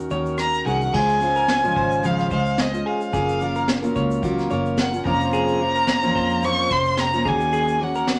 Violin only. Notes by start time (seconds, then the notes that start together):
0.41 A#5
0.68 F#5
0.95 G#5
2.05 F5
2.32 F5
2.60 D#5
2.87 F5
4.79 F#5
5.07 A#5
5.34 A#5
6.45 C#6
6.72 C6
7.00 A#5
7.28 G#5
7.83 F#5